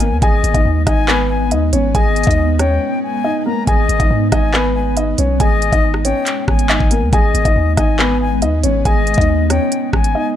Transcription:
Already playing: G#1 G#3 B3 G#5
0.00 A#3 A#4, closed hi-hat
0.11 D#2
0.22 G#1 B3 G#4 D#5 G#5, kick, closed hi-hat
0.44 G#1, closed hi-hat
0.54 G#1 D#4 D#5, kick, closed hi-hat
0.65 D#2
0.87 G#1 D#4 D#5 G#5, kick, cross-stick, closed hi-hat
1.08 B3 B4, clap
1.30 G#5
1.51 D#2 D#4 D#5, closed hi-hat
1.73 G#1 C#4 C#5, closed hi-hat
1.95 G#1 G#4 D#5 G#5, kick, closed hi-hat
2.16 closed hi-hat
2.23 D#2 D#5, kick, closed hi-hat
2.28 D#4, closed hi-hat
2.59 C#4 C#5 G5, cross-stick, closed hi-hat
3.03 G#5
3.24 D#4 D#5
3.46 A#3 A#4 A#5
3.67 G#1 G#4 D#5 G#5, kick, closed hi-hat
3.89 G#1, closed hi-hat
4.00 G#1 D#4 D#5, kick, closed hi-hat
4.10 G#2
4.32 G#1 D#4 D#5 G#5, kick, cross-stick, closed hi-hat
4.54 B3 B4, clap
4.75 G#5
4.97 D#4 D#5, closed hi-hat
5.18 B1 C#4 C#5, closed hi-hat
5.40 G#1 G#4 D#5 G#5, kick, closed hi-hat
5.62 closed hi-hat
5.72 G#1 D#4 D#5, kick, closed hi-hat
5.94 cross-stick
6.05 C#4 C#5 G5, closed hi-hat
6.26 clap, closed hi-hat
6.48 G#1 G#5, kick, cross-stick
6.59 closed hi-hat
6.69 D#4 D#5, clap
6.80 G#1, kick
6.91 A#3 A#4, closed hi-hat
7.02 D#2
7.12 G#1 G#3 B3 G#4 D#5 G#5, kick, closed hi-hat
7.34 G#1, closed hi-hat
7.45 G#1 D#4 D#5, kick, closed hi-hat
7.56 D#2
7.77 G#1 D#4 D#5 G#5, kick, cross-stick, closed hi-hat
7.99 B3 B4, clap
8.21 G#5
8.42 D#2 D#4 D#5, closed hi-hat
8.63 G#1 C#4 C#5, closed hi-hat
8.85 G#1 G#4 D#5 G#5, kick, closed hi-hat
9.07 closed hi-hat
9.14 D#2 D#5, kick, closed hi-hat
9.18 D#4, closed hi-hat
9.50 C#4 C#5 G5, cross-stick, closed hi-hat
9.72 closed hi-hat
9.93 G#1 G#5, kick, cross-stick
10.04 closed hi-hat
10.15 D#4 D#5

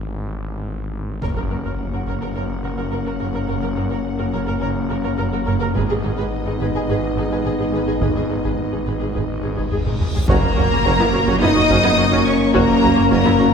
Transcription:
Already playing: G#1
1.22 F#1 F#2 A#3 C#4 A#4 C#5 F#5, taiko, impact
1.36 F#2 A#4
1.50 F#1 F#2 F#4 A#4
1.65 F#2 A#4 C#5
1.93 F#2 F#4 A#4
2.07 F#1 F#2 A#4 C#5, taiko
2.21 F#2 A#4
2.35 F#1 F#2 A#4 C#5
2.64 F#1 F#2 F#4 A#4
2.77 F#2 A#4 C#5
2.92 F#1 F#2 A#4
3.06 F#2 F#4 A#4
3.20 F#1 F#2 A#4 C#5
3.34 F#2 A#4
3.48 F#1 F#2 A#4 C#5
3.62 F#2 A#4
3.76 F#1 F#2 F#4 A#4
3.90 F#2 A#4 C#5
4.19 F#2 F#4 A#4
4.32 F#1 F#2 A#4 C#5
4.47 F#2 A#4
4.61 F#1 F#2 A#4 C#5
4.90 F#1 F#2 F#4 A#4
5.04 F#2 A#4 C#5
5.18 F#1 F#2 A#4
5.33 F#2 F#4 A#4
5.46 F#1 F#2 A#4 C#5
5.60 F#2 A#4
5.75 G#1 G#2 B3 D#4 G#4 B4 D#5, taiko
5.89 G#2 G#4
6.03 G#1 G#2 D#4 G#4
6.17 G#2 G#4 B4
6.45 G#2 D#4 G#4
6.60 G#1 G#2 G#4 B4, taiko
6.74 G#2 G#4
6.89 G#1 G#2 G#4 B4
7.16 G#1 G#2 D#4 G#4
7.30 G#2 G#4 B4
7.45 G#1 G#2 G#4
7.59 G#2 D#4 G#4
7.73 G#1 G#2 G#4 B4
7.87 G#2 G#4
8.01 G#1 G#2 G#4 B4, taiko, reverse cymbal
8.15 G#2 G#4
8.29 G#1 G#2 D#4 G#4
8.44 G#2 G#4 B4, taiko
8.72 G#2 D#4 G#4
8.86 G#1 G#2 G#4 B4
9.00 G#2 G#4
9.14 G#1 G#2 G#4 B4, taiko
9.43 G#1 G#2 D#4 G#4
9.57 G#2 G#4 B4, taiko
9.72 G#1 G#2 G#4, taiko low-mid
9.85 G#2 D#4 G#4, taiko mid
10.00 G#1 G#2 G#4 B4, taiko low-mid
10.14 G#2 G#4, taiko low
10.28 F#1 F#2 A#3 C#4 F#4 A#4 A#5, taiko, impact
10.56 F#1 F#2 C#4 F#4, taiko low
10.70 F#2 A#3 C#4
10.84 F#1 F#2 C#4 F#4, taiko
10.99 F#2 B3 E4
11.13 F#1 F#2 C#4 F#4
11.27 F#2 C#4 F#4, taiko
11.41 F#1 F#2 B3 D#4 E4 D#5 D#6
11.56 F#2 C#4 F#4
11.70 F#1 F#2 C#4 F#4, taiko
11.83 F#2 B3 E4
11.97 F#1 F#2 C#4 F#4
12.12 F#2 C#4 F#4
12.26 C#4 C#5 C#6
12.54 F#1 F#2 A#3 C#4 F#4 A#4 A#5, taiko
12.82 F#1 F#2 C#4 F#4, taiko low
12.96 F#2 A#3 C#4
13.10 F#1 F#2 A#3 C#4 F#4 A#4 A#5, taiko
13.25 F#2 B3 E4
13.39 F#1 F#2 C#4 F#4

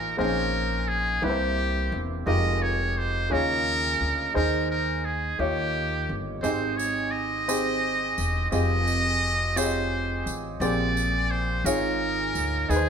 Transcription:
Already playing: A1 G#2 A#3 D#4 F4 G#4 A#4 C5
0.17 A#1 A#2 A#3 C4 D#4 G#4 A#4 C5
0.24 C#4
0.88 G#4
1.22 C2 C3 A#3 C4 E4 G4 B4
1.29 C5
1.92 E1
2.26 F1 G#3 D#4 F4 G4 A#4 D#5
2.62 C#5
2.98 C5
3.30 D#2 C#3 A#3 D#4 F4 G#4 A#4 C#5
4.01 D2
4.34 D#2 D#3 D#4 G#4 A#4 C5
4.70 A#4
5.05 G#4
5.39 D#2 D#3 A#3 D#4 F4 G4 C#5
6.09 G1
6.42 G#1 G#2 C4 D#4 G4 G#4 C5 D#5, tambourine
6.77 C#5, tambourine
7.11 D#5
7.48 C4 D#4 G4 G#4 C5, tambourine
8.18 E1, tambourine
8.51 F1 C4 F4 G4 G#4 D#5, tambourine
8.88 tambourine
9.56 C4 F4 G4 G#4 C5 C#5, tambourine
9.64 D#5
10.26 A1, tambourine
10.60 A#1 A#2 C4 G4 G#4 A#4 D5, tambourine
10.97 tambourine
11.31 C5
11.64 G#1 G#2 F4 G#4 A#4 C#5, tambourine
12.35 D2, tambourine
12.69 D#2 D#3 D#4 G#4 B4, tambourine
12.76 C5

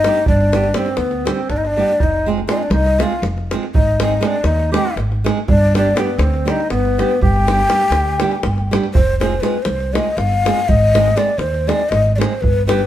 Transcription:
Already playing: D#4 D#5
0.04 G3 B3 D4 G4, davul high
0.16 davul high
0.26 G1 D4 D5, davul low
0.41 davul high
0.52 G3 B3 D4 G4, davul high
0.64 davul high
0.74 G3 B3 C4 D4 G4 C5, davul high
0.86 davul high
0.97 D2 B3 B4, davul high
1.11 davul high
1.25 G3 B3 C4 D4 G4 C5, davul high
1.49 G1 D4 D5, davul high, davul low
1.57 D#4 D#5
1.65 D4 D5, davul high
1.77 G3 B3 D4 G4
1.89 davul high
1.99 F1 D#4, davul low
2.04 D#5
2.26 G#3 C4 F4 G#4
2.38 davul high
2.47 G#3 C4 D4 F4 G#4 D5, davul high
2.53 D#4
2.57 D4 D#5
2.63 D5
2.70 C2 D#4 D#5, davul high
2.86 davul high
2.99 G#3 C4 F4 G#4 F5, davul high
3.12 davul high
3.22 F1, davul high
3.38 davul high
3.51 G#3 C4 F4 G#4, davul high
3.63 davul high
3.74 G#1 D#4 D#5, davul low
4.00 G#3 C4 D#4 G#4 D#5, davul high
4.11 davul high
4.21 G#3 C4 D4 D#4 G#4, davul high
4.25 D5
4.44 D#2 D#4 D#5, davul high
4.59 davul high
4.72 G#3 C4 D#4 G4 G#4 G5, davul high
4.86 davul high
4.96 G#1, davul high
5.12 davul high
5.24 G#3 C4 D#4 G#4, davul high
5.37 davul high
5.48 G1 D4 D5, davul low
5.74 G3 B3 D4 G4 D5, davul high
5.94 G3 B3 D4 G4, davul high
5.99 B4
6.17 D2 C4 C5, davul high
6.34 davul high
6.45 G3 B3 D4 D#4 G4, davul high
6.50 D#5
6.60 davul high
6.69 G1 B3 B4, davul high
6.85 davul high
6.98 G3 B3 D4 G4, davul high
7.11 davul high
7.21 G1 G4 G5, davul low
7.36 davul high
7.47 G3 B3 D4 G4, davul high
7.59 davul high
7.69 G3 B3 D4 G4, davul high
7.81 davul high
7.91 D2, davul high
8.20 G3 B3 D4 G4, davul high
8.31 davul high
8.43 G1, davul high, davul low
8.58 davul high
8.71 G3 B3 D4 G4, davul high
8.84 davul high
8.94 F1 C5, davul low
9.20 G#3 C4 F4 G#4 C5, davul high
9.32 davul high
9.40 G#3 C4 F4 G#4 B4, davul high
9.63 C2 C5, davul high
9.80 davul high
9.93 G#3 C4 F4 G#4 D#5, davul high
10.06 davul high
10.17 G1 F5, davul high
10.32 davul high
10.45 G#3 C4 F4 G#4, davul high
10.57 davul high
10.69 G#1 D#5, davul low
10.95 G#3 C4 D#4 G#4, davul high
11.07 davul high
11.16 G#3 C4 D#4 G#4 D5, davul high
11.38 D#2 C5, davul high
11.54 davul high
11.67 G#3 C4 D#4 G#4 D5, davul high
11.80 davul high
11.89 G#1 D#5, davul high
12.06 davul high
12.15 G#3 C4 D#4 C5 D5
12.20 G#4, davul high
12.33 davul high
12.41 G1 B4, davul low
12.67 G3 B3 D4 G4 B4, davul high
12.79 davul high

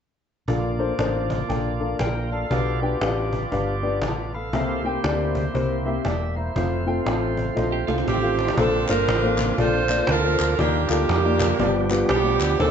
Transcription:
0.48 A#1 A#2 A#3 D4 F4 A4 A#4 D5 F5, cajon bass
0.79 D4 A4 A#4 C5, cajon slap
0.98 A1 D4 A4 A#4 C5, cajon slap
1.30 cajon bass
1.40 cajon slap
1.49 A#1 D4 A4 A#4 G5, cajon bass
1.80 D4 A4 A#4 F5, cajon slap
1.99 A#1 A#4 D5 G5, cajon bass, cajon slap
2.31 A4 D5 F5 A5, cajon slap
2.50 B1 B2 B3 D4 F4 G4 B4 D5 F5, cajon bass
2.82 D4 G4 B4 G5, cajon slap
3.01 A1 D4 G4 B4 F5, cajon slap
3.33 cajon bass
3.42 cajon slap
3.51 G1 D4 G4 B4 F5, cajon bass
3.83 D4 G4 B4 D5, cajon slap
4.02 A1 F4 D5 A5 D6, cajon bass, cajon slap
4.34 A4 F5 B5, cajon slap
4.53 C2 C3 A#3 C4 E4 G4 A#4 E5, cajon bass
4.60 C5
4.84 C4 G4 A#4 G5, cajon slap
5.04 D2 C4 G4 A#4 D5, cajon slap
5.35 cajon bass
5.45 cajon slap
5.54 C2 C4 G4 A#4 C5, cajon bass
5.85 C4 G4 A#4 E5, cajon slap
6.05 E1 G4 D5 E5 G5, cajon bass, cajon slap
6.36 E4 C5 E5 A#5, cajon slap
6.55 F1 A3 C4 F4 A4 C5 F5, cajon bass
6.87 C4 F4 A4 G5, cajon slap
7.05 A1 C4 F4 A4 G5, cajon slap
7.37 cajon bass
7.47 cajon slap
7.55 A#1 C4 F4 A4 D#5, cajon bass, cajon slap
7.72 G4
7.87 C2 A3 C4 F4 A4 F5, cajon slap
7.97 D#3 C4, cajon slap
8.07 A1 C4 G4, cajon bass, cajon slap
8.22 C4 F4 A4 F5
8.39 cajon slap
8.48 cajon slap
8.57 A#1 A#2 D3 F3 A#3 C4 D4 F4 A4 C5, cajon bass
8.89 G1 A#3 D4 F4 A4 A#4 C5, cajon slap, clap
9.08 A1, cajon slap
9.23 A#3 D4 F4 A4 C5
9.38 cajon bass, clap
9.49 cajon slap
9.57 A#1 A#3 D4 F4 A4 C5 D5, cajon bass
9.88 A#3 D4 F4 A4 D5, cajon slap, clap
10.07 D2 D4 F4 A#4, cajon bass, cajon slap
10.23 A#3 D4 F4 A4 C5
10.39 D2, cajon slap, clap
10.59 D#2 D#3 G3 A#3 D4 D#4 F4 G4 D5, cajon bass
10.89 D2 A#3 D4 D#4 F4 G4 A4, cajon slap, clap
11.09 F2, cajon slap
11.25 A#3 D#4 F4 G4 D5
11.40 cajon bass, clap
11.50 cajon slap
11.59 G1 G2 F3 G3 B3 D4 F4 G4 D5, cajon bass
11.65 G4
11.90 B3 D4 F4 G4 B4, cajon slap, clap
12.09 B1 B3 D4 G4, cajon bass, cajon slap
12.24 B3 D4 F4 G4 D5
12.41 D2, cajon slap, clap
12.58 D#2 D#3 A#3 C4 D4 D#4 F4 G4 A4 C5, cajon bass
12.65 G4

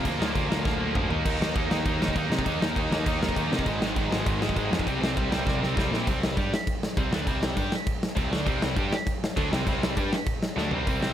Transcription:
0.05 D2 A#2 F3 A#3, kick, crash
0.20 D2 A#2 F3 A#3, snare
0.35 D2 A#2 F3 A#3, kick, crash
0.49 D2 A#2 F3 A#3, snare
0.64 D2 A#2 F3 A#3, kick, snare
0.80 A#2 F3 A#3
0.95 D2 A#2 F3 A#3, kick, mid tom
1.09 D#2 D#3 A#3 D#4, floor tom
1.25 D#2 D#3 A#3 D#4, kick, crash
1.40 D#2 D#3 A#3 D#4, snare
1.54 D#2 D#3 A#3 D#4, kick, crash
1.69 D#2 D#3 A#3 D#4, snare
1.85 D#2 D#3 A#3 D#4, kick, crash
1.99 D#3 A#3 D#4, snare
2.08 kick
2.16 D#2 D#3 A#3 D#4, kick, crash
2.30 C3 D#3 A#3 D#4, snare
2.39 kick
2.46 D#2 D#3 A#3 D#4, kick, crash
2.60 D#2 D#3 A#3 D#4, snare
2.76 D#2 D#3 A#3 D#4, kick, crash
2.91 D#2 D#3 A#3 D#4, snare
3.06 D#2 D#3 A#3 D#4, kick, crash
3.22 D#3 A#3 D#4, snare
3.29 kick
3.36 D#2 D#3 A#3 D#4, kick, crash
3.52 C3 D#3 A#3 D#4, snare
3.59 kick
3.66 G#1 G#2 D#3 G#3, kick, crash
3.81 G#1 G#2 D#3 G#3, snare
3.96 G#1 G#2 D#3 G#3, kick, crash
4.10 G#1 G#2 D#3 G#3, snare
4.26 G#1 G#2 D#3 G#3, kick, crash
4.42 G#2 D#3 G#3, snare
4.49 kick
4.56 G#1 G#2 D#3 G#3, kick, crash
4.71 F2 G#2 D#3 G#3, snare
4.79 kick
4.87 C2 C3 G3 C4, kick, crash
5.01 C2 C3 G3 C4, snare
5.17 C2 C3 G3 C4, kick, crash
5.31 C2 C3 G3 C4, snare
5.46 C2 C3 G3 C4, kick, snare
5.61 C3 G3 C4, snare
5.77 C2 C3 G3 C4, kick, snare
5.91 A#2 C3 G3 C4, snare
6.06 C2 C3 G3 C4, kick, crash
6.23 snare
6.36 G2 G3 D4 G4, kick, crash
6.54 snare
6.67 kick, crash
6.83 snare
6.97 C2 C3 G3 C4, kick, crash
7.12 D2 D3 A3 D4, snare
7.26 C2 C3 G3 C4, kick, crash
7.43 snare
7.56 G2 G3 D4 G4, kick, crash
7.72 snare
7.87 kick, crash
8.03 snare
8.15 C2 C3 G3 C4, kick, crash
8.30 D2 D3 A3 D4, snare
8.46 C2 C3 G3 C4, kick, crash
8.62 snare
8.76 G2 G3 D4 G4, kick, crash
8.93 snare
9.07 kick, crash
9.24 snare
9.37 D2 D3 A3 D4, kick, crash
9.52 C2 C3 G3 C4, snare
9.67 C2 C3 G3 C4, kick, crash
9.83 snare
9.97 G2 G3 D4 G4, kick, crash
10.13 snare
10.26 kick, crash
10.43 snare
10.57 D2 D3 A3 D4, snare
10.71 C2 C3 G3 C4, floor tom
10.87 C2 C3 G3 C4, kick, open hi-hat
11.01 C2 C3 G3 C4, snare

